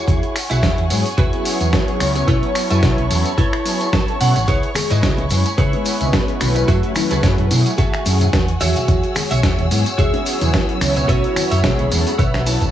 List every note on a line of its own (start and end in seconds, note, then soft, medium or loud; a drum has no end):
0.00 0.35 E4 loud
0.00 0.35 F#4 medium
0.00 0.35 G#4 medium
0.00 0.35 C#5 loud
0.00 6.64 C#5 medium
0.00 2.26 F#5 medium
0.00 2.26 G#5 medium
0.00 8.57 C#6 medium
0.08 0.19 E2 loud
0.08 kick loud
0.08 closed hi-hat medium
0.08 tambourine soft
0.23 closed hi-hat soft
0.36 finger snap medium
0.36 open hi-hat loud
0.36 tambourine medium
0.50 0.60 B1 medium
0.50 0.84 E4 loud
0.50 0.84 F#4 medium
0.50 0.84 G#4 medium
0.50 0.84 E5 loud
0.50 closed hi-hat medium
0.50 tambourine soft
0.63 0.74 E2 medium
0.63 kick loud
0.63 snare loud
0.63 closed hi-hat medium
0.63 tambourine soft
0.78 0.87 E2 loud
0.78 closed hi-hat soft
0.90 1.02 G#2 loud
0.90 1.03 F#3 medium
0.90 1.04 B3 medium
0.90 1.04 C#4 medium
0.90 1.04 E4 medium
0.90 1.04 G#4 loud
0.90 open hi-hat loud
0.90 tambourine medium
1.06 closed hi-hat medium
1.06 tambourine soft
1.17 1.29 E1 medium
1.17 1.67 E4 medium
1.17 1.67 F#4 medium
1.17 1.67 G#4 medium
1.17 1.67 B4 medium
1.17 kick loud
1.17 closed hi-hat medium
1.17 tambourine soft
1.33 1.57 F#3 medium
1.33 1.57 B3 medium
1.33 1.57 C#4 medium
1.33 1.57 E4 medium
1.33 1.57 G#4 medium
1.33 closed hi-hat soft
1.45 open hi-hat loud
1.45 tambourine medium
1.60 1.70 E2 medium
1.60 1.97 F#3 medium
1.60 1.97 B3 medium
1.60 1.97 C#4 medium
1.60 1.98 E4 medium
1.60 1.98 G#4 medium
1.60 closed hi-hat medium
1.60 tambourine soft
1.73 kick loud
1.73 snare loud
1.73 closed hi-hat medium
1.88 closed hi-hat soft
2.00 2.22 C#2 medium
2.00 3.07 F#3 medium
2.00 3.07 B3 medium
2.00 3.08 C#4 medium
2.00 3.08 E4 medium
2.00 3.08 C#5 loud
2.00 finger snap medium
2.00 open hi-hat loud
2.00 tambourine medium
2.15 muted clean electric guitar stroke medium
2.15 closed hi-hat medium
2.15 tambourine soft
2.28 2.39 B1 loud
2.28 2.49 E4 loud
2.28 2.49 A4 loud
2.28 2.49 B4 medium
2.28 2.49 C#5 loud
2.28 4.46 A5 medium
2.28 4.46 B5 medium
2.28 kick loud
2.28 closed hi-hat medium
2.28 tambourine soft
2.43 closed hi-hat soft
2.55 finger snap medium
2.55 open hi-hat loud
2.55 tambourine medium
2.70 2.80 F#2 medium
2.70 3.04 E4 medium
2.70 3.04 A4 medium
2.70 3.04 B4 medium
2.70 3.04 E5 loud
2.70 closed hi-hat medium
2.70 tambourine soft
2.83 2.94 B1 medium
2.83 kick loud
2.83 snare loud
2.83 closed hi-hat medium
2.83 tambourine soft
2.98 3.07 B1 loud
2.98 closed hi-hat soft
3.10 3.22 E2 medium
3.10 3.31 F#3 medium
3.10 3.31 B3 medium
3.10 3.31 C#4 medium
3.10 3.31 E4 medium
3.10 3.31 A4 loud
3.10 open hi-hat loud
3.10 tambourine medium
3.26 closed hi-hat soft
3.26 tambourine soft
3.38 3.87 E4 loud
3.38 3.87 A4 medium
3.38 3.87 B4 medium
3.38 3.87 C#5 medium
3.38 kick loud
3.38 closed hi-hat medium
3.38 tambourine soft
3.53 finger snap medium
3.53 closed hi-hat soft
3.65 3.85 F#3 medium
3.65 3.86 B3 medium
3.65 3.86 C#4 medium
3.65 3.86 E4 medium
3.65 3.86 G#4 medium
3.65 open hi-hat loud
3.65 tambourine medium
3.81 closed hi-hat soft
3.81 tambourine soft
3.93 4.19 A5 medium
3.93 kick loud
3.93 snare loud
3.93 closed hi-hat medium
3.93 tambourine soft
4.08 4.17 F#3 medium
4.08 4.17 B3 medium
4.08 4.18 C#4 medium
4.08 4.18 E4 medium
4.08 4.18 A4 medium
4.08 closed hi-hat soft
4.20 4.32 B2 medium
4.20 4.34 F#3 medium
4.20 4.34 B3 medium
4.20 4.34 C#4 medium
4.20 4.34 E4 medium
4.20 4.34 A4 loud
4.20 4.46 F#5 medium
4.20 open hi-hat loud
4.20 tambourine medium
4.35 4.45 A1 loud
4.35 muted clean electric guitar stroke medium
4.35 closed hi-hat soft
4.35 tambourine soft
4.47 4.59 C#2 loud
4.47 4.69 E4 medium
4.47 4.69 G#4 loud
4.47 4.69 B4 loud
4.47 4.69 C#5 loud
4.47 6.66 G#5 medium
4.47 6.66 B5 medium
4.47 kick loud
4.47 closed hi-hat medium
4.47 tambourine soft
4.47 maracas medium
4.63 closed hi-hat soft
4.63 maracas soft
4.75 4.91 G#4 medium
4.75 finger snap medium
4.75 open hi-hat loud
4.75 tambourine medium
4.75 high conga loud
4.75 maracas loud
4.90 5.00 G#2 medium
4.90 5.24 E4 medium
4.90 5.25 G#4 medium
4.90 5.25 B4 medium
4.90 5.25 D#5 medium
4.90 closed hi-hat medium
4.90 tambourine soft
4.90 maracas soft
5.02 5.14 C#2 medium
5.02 kick loud
5.02 snare loud
5.02 closed hi-hat medium
5.02 tambourine soft
5.02 maracas medium
5.17 5.27 C#2 medium
5.17 closed hi-hat soft
5.17 high conga medium
5.17 low conga medium
5.30 5.42 F#2 medium
5.30 5.44 G#3 medium
5.30 5.44 B3 medium
5.30 5.44 C#4 medium
5.30 5.44 E4 medium
5.30 5.44 B4 loud
5.30 open hi-hat loud
5.30 tambourine medium
5.30 maracas loud
5.46 closed hi-hat medium
5.46 tambourine soft
5.46 maracas soft
5.58 5.69 C#3 medium
5.58 6.07 E4 medium
5.58 6.07 G#4 medium
5.58 5.73 G#4 medium
5.58 6.07 B4 medium
5.58 6.07 C#5 loud
5.58 kick loud
5.58 closed hi-hat medium
5.58 tambourine soft
5.58 high conga medium
5.58 maracas medium
5.73 5.97 G#3 medium
5.73 5.97 B3 medium
5.73 5.97 C#4 medium
5.73 5.97 E4 medium
5.73 5.98 B4 medium
5.73 closed hi-hat soft
5.73 high bongo medium
5.73 maracas soft
5.85 open hi-hat loud
5.85 tambourine medium
5.85 maracas medium
6.00 6.10 C#2 medium
6.00 6.38 G#3 medium
6.00 6.38 B3 medium
6.00 6.38 C#4 medium
6.00 6.38 E4 medium
6.00 6.38 B4 medium
6.00 closed hi-hat medium
6.00 tambourine soft
6.00 high conga medium
6.00 low conga medium
6.00 maracas soft
6.13 kick loud
6.13 snare loud
6.13 closed hi-hat medium
6.13 tambourine soft
6.13 maracas soft
6.28 closed hi-hat soft
6.28 maracas soft
6.39 6.62 B1 medium
6.39 7.47 F#3 medium
6.39 7.48 A3 medium
6.39 7.48 C#4 medium
6.39 7.48 E4 medium
6.39 7.48 B4 loud
6.39 finger snap medium
6.39 open hi-hat loud
6.39 tambourine medium
6.39 high conga medium
6.39 maracas medium
6.55 muted clean electric guitar stroke medium
6.55 closed hi-hat soft
6.55 tambourine soft
6.55 low conga medium
6.55 maracas soft
6.68 6.80 F#2 loud
6.68 8.59 A3 medium
6.68 6.90 F#4 loud
6.68 6.83 F#4 loud
6.68 6.90 G#4 loud
6.68 6.90 A4 medium
6.68 6.90 E5 loud
6.68 11.05 F#5 medium
6.68 11.05 G#5 medium
6.68 kick loud
6.68 closed hi-hat medium
6.68 tambourine soft
6.68 maracas medium
6.83 closed hi-hat soft
6.83 maracas soft
6.95 7.11 E4 medium
6.95 finger snap medium
6.95 open hi-hat loud
6.95 tambourine medium
6.95 high conga medium
6.95 maracas loud
7.10 7.20 C#2 medium
7.10 7.45 F#4 medium
7.10 7.45 G#4 medium
7.10 7.45 A4 medium
7.10 7.45 B4 loud
7.10 closed hi-hat medium
7.10 tambourine soft
7.10 maracas soft
7.23 7.34 F#2 medium
7.23 kick loud
7.23 snare loud
7.23 closed hi-hat medium
7.23 tambourine soft
7.23 maracas medium
7.38 7.48 F#2 medium
7.38 closed hi-hat soft
7.38 high conga medium
7.38 low conga medium
7.50 7.62 B2 loud
7.50 7.71 F#3 medium
7.50 7.71 A3 medium
7.50 7.71 C#4 medium
7.50 7.71 E4 medium
7.50 7.71 G#4 loud
7.50 open hi-hat loud
7.50 tambourine medium
7.50 high bongo medium
7.50 maracas loud
7.66 closed hi-hat medium
7.66 tambourine soft
7.66 maracas soft
7.78 8.27 F#4 medium
7.78 8.27 G#4 medium
7.78 8.27 A4 medium
7.78 8.27 E5 medium
7.78 kick loud
7.78 closed hi-hat medium
7.78 tambourine soft
7.78 high conga medium
7.78 maracas medium
7.93 finger snap medium
7.93 closed hi-hat soft
7.93 maracas soft
8.05 8.27 F#2 medium
8.05 8.26 F#3 medium
8.05 8.26 A3 medium
8.05 8.26 C#4 medium
8.05 8.26 E4 medium
8.05 8.26 G#4 medium
8.05 open hi-hat loud
8.05 tambourine medium
8.05 high bongo soft
8.05 maracas loud
8.20 closed hi-hat medium
8.20 tambourine soft
8.20 high conga medium
8.20 low conga medium
8.20 maracas soft
8.33 8.54 E2 medium
8.33 kick loud
8.33 snare loud
8.33 closed hi-hat medium
8.33 tambourine soft
8.33 maracas medium
8.48 closed hi-hat soft
8.48 maracas soft
8.60 8.72 E2 loud
8.60 9.15 F#4 loud
8.60 9.16 F#4 medium
8.60 9.16 G#4 medium
8.60 12.71 C#5 medium
8.60 9.16 C#5 medium
8.60 9.16 E5 loud
8.60 12.71 E6 medium
8.60 open hi-hat loud
8.60 tambourine medium
8.60 high conga medium
8.60 maracas medium
8.75 closed hi-hat medium
8.75 tambourine soft
8.75 high bongo soft
8.75 low conga medium
8.75 maracas soft
8.88 9.00 E2 loud
8.88 kick loud
8.88 closed hi-hat medium
8.88 tambourine soft
8.88 maracas medium
9.03 closed hi-hat soft
9.03 maracas soft
9.15 9.31 G#4 medium
9.15 finger snap medium
9.15 open hi-hat loud
9.15 tambourine medium
9.15 high conga loud
9.15 maracas loud
9.31 9.40 B1 medium
9.31 9.65 F#4 medium
9.31 9.65 G#4 medium
9.31 9.65 C#5 medium
9.31 9.65 E5 loud
9.31 closed hi-hat medium
9.31 tambourine soft
9.31 maracas soft
9.43 9.55 E2 medium
9.43 kick loud
9.43 snare loud
9.43 closed hi-hat medium
9.43 tambourine soft
9.43 maracas medium
9.58 9.68 E2 medium
9.58 closed hi-hat soft
9.58 high conga medium
9.58 low conga medium
9.71 9.82 G#2 medium
9.71 9.84 F#3 medium
9.71 9.84 B3 medium
9.71 9.84 C#4 medium
9.71 9.85 E4 medium
9.71 9.85 G#4 medium
9.71 open hi-hat loud
9.71 tambourine medium
9.71 maracas loud
9.85 closed hi-hat medium
9.85 tambourine soft
9.85 maracas soft
9.98 10.10 E1 medium
9.98 10.47 F#4 medium
9.98 10.14 G#4 medium
9.98 10.47 G#4 medium
9.98 10.47 C#5 medium
9.98 10.47 E5 loud
9.98 kick loud
9.98 closed hi-hat medium
9.98 tambourine soft
9.98 high conga medium
9.98 maracas medium
10.13 10.37 F#3 medium
10.13 10.38 B3 medium
10.13 10.38 C#4 medium
10.13 10.38 E4 medium
10.13 10.38 G#4 medium
10.13 closed hi-hat soft
10.13 high bongo medium
10.13 maracas soft
10.26 open hi-hat loud
10.26 tambourine medium
10.26 maracas loud
10.41 10.50 E2 medium
10.41 10.78 F#3 medium
10.41 10.78 B3 medium
10.41 10.78 C#4 medium
10.41 10.78 E4 medium
10.41 10.78 G#4 medium
10.41 closed hi-hat medium
10.41 tambourine soft
10.41 high conga medium
10.41 low conga medium
10.41 maracas soft
10.53 kick loud
10.53 snare loud
10.53 closed hi-hat medium
10.53 tambourine soft
10.53 maracas medium
10.69 closed hi-hat soft
10.69 maracas soft
10.80 11.02 C#2 medium
10.80 11.88 F#3 loud
10.80 11.88 B3 medium
10.80 11.88 C#4 medium
10.80 11.89 E4 medium
10.80 11.89 C#5 loud
10.80 finger snap medium
10.80 open hi-hat loud
10.80 tambourine medium
10.80 high conga medium
10.80 maracas loud
10.96 muted clean electric guitar stroke loud
10.96 closed hi-hat medium
10.96 tambourine medium
10.96 low conga medium
10.96 maracas soft
11.08 11.20 B1 loud
11.08 11.51 F#4 loud
11.08 11.30 A4 loud
11.08 11.30 B4 loud
11.08 11.30 C#5 medium
11.08 11.30 E5 loud
11.08 12.71 F#5 medium
11.08 12.71 B5 medium
11.08 kick loud
11.08 closed hi-hat medium
11.08 tambourine soft
11.08 maracas medium
11.24 closed hi-hat soft
11.24 maracas soft
11.36 finger snap medium
11.36 open hi-hat loud
11.36 tambourine medium
11.36 high conga medium
11.36 maracas loud
11.51 11.60 F#2 medium
11.51 11.85 A4 medium
11.51 11.85 B4 medium
11.51 11.85 C#5 medium
11.51 11.85 E5 loud
11.51 closed hi-hat medium
11.51 tambourine soft
11.51 maracas soft
11.64 11.75 B1 medium
11.64 12.19 G#4 loud
11.64 kick loud
11.64 snare loud
11.64 closed hi-hat medium
11.64 tambourine soft
11.64 maracas medium
11.79 11.88 B1 medium
11.79 closed hi-hat soft
11.79 high conga medium
11.79 low conga medium
11.79 maracas soft
11.91 12.03 E2 medium
11.91 12.11 F#3 medium
11.91 12.11 B3 medium
11.91 12.11 C#4 medium
11.91 12.12 E4 medium
11.91 12.12 A4 loud
11.91 open hi-hat loud
11.91 tambourine medium
11.91 high bongo medium
11.91 maracas loud
12.06 closed hi-hat medium
12.06 tambourine soft
12.06 maracas soft
12.18 12.55 B1 loud
12.18 12.68 A4 medium
12.18 12.68 B4 medium
12.18 12.68 C#5 medium
12.18 12.68 E5 medium
12.18 kick loud
12.18 closed hi-hat medium
12.18 tambourine soft
12.18 high conga medium
12.18 maracas medium
12.34 finger snap medium
12.34 snare soft
12.34 closed hi-hat soft
12.34 maracas soft
12.46 12.66 F#3 medium
12.46 12.66 B3 medium
12.46 12.67 C#4 medium
12.46 12.67 E4 medium
12.46 12.67 A4 medium
12.46 12.71 A5 medium
12.46 open hi-hat loud
12.46 tambourine medium
12.46 high bongo soft
12.46 maracas medium
12.61 kick medium
12.61 closed hi-hat medium
12.61 tambourine soft
12.61 high conga medium
12.61 low conga medium
12.61 maracas soft